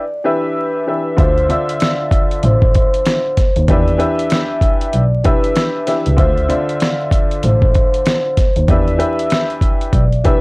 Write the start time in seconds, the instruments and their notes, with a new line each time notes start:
Already playing: vibraphone D5
0.24 upright piano E3 D4 G4 B4 E5, vibraphone B4
0.87 upright piano E3 D4 G4 B4 E5
1.17 double bass D2, upright piano D3 D4 F4 C5 E5, vibraphone C5, kick, closed hi-hat
1.38 closed hi-hat
1.49 upright piano D3 D4 F4 C5 E5, vibraphone D5, closed hi-hat
1.69 closed hi-hat
1.80 snare, closed hi-hat
2.11 kick, closed hi-hat
2.31 closed hi-hat
2.43 double bass A1, vibraphone C5, closed hi-hat
2.62 kick
2.75 vibraphone C5, kick, closed hi-hat
2.94 closed hi-hat
3.06 snare, closed hi-hat
3.37 kick, snare, closed hi-hat
3.56 double bass D#2, closed hi-hat
3.68 double bass E2, upright piano E3 D4 G4 B4 E5, vibraphone D5, kick, closed hi-hat
3.88 closed hi-hat
3.98 upright piano E3 D4 G4 B4 E5, vibraphone E5, closed hi-hat
4.19 closed hi-hat
4.30 snare, closed hi-hat
4.61 kick, closed hi-hat
4.81 closed hi-hat
4.93 double bass B1, vibraphone D5, closed hi-hat
5.24 upright piano E3 D4 G4 B4 E5, vibraphone B4, kick, closed hi-hat
5.44 closed hi-hat
5.56 snare, closed hi-hat
5.86 upright piano E3 D4 G4 B4 E5, snare, closed hi-hat
6.06 double bass C#2, closed hi-hat
6.17 double bass D2, upright piano D3 D4 F4 C5 E5, vibraphone C5, kick, closed hi-hat
6.38 closed hi-hat
6.49 upright piano D3 D4 F4 C5 E5, vibraphone D5, closed hi-hat
6.69 closed hi-hat
6.80 snare, closed hi-hat
7.11 kick, closed hi-hat
7.31 closed hi-hat
7.43 double bass A1, vibraphone C5, closed hi-hat
7.62 kick
7.74 vibraphone C5, kick, closed hi-hat
7.94 closed hi-hat
8.06 snare, closed hi-hat
8.37 kick, snare, closed hi-hat
8.56 double bass D#2, closed hi-hat
8.68 double bass E2, upright piano E3 D4 G4 B4 E5, vibraphone D5, kick, closed hi-hat
8.88 closed hi-hat
8.98 upright piano E3 D4 G4 B4 E5, vibraphone E5, closed hi-hat
9.19 closed hi-hat
9.30 snare, closed hi-hat
9.50 closed hi-hat
9.61 kick, closed hi-hat
9.81 closed hi-hat
9.93 double bass B1, vibraphone D5, kick, closed hi-hat
10.12 closed hi-hat
10.24 upright piano E3 D4 G4 B4 E5, vibraphone B4, kick, closed hi-hat